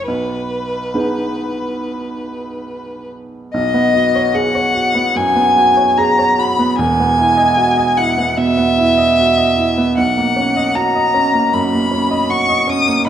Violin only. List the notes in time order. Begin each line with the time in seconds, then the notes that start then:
0.07 B4
3.53 D#5
4.35 F#5
5.17 G#5
5.98 A#5
6.39 B5
6.78 G#5
7.97 F#5
8.37 E5
9.97 F#5
10.76 A#5
11.53 B5
12.30 C#6
12.69 D#6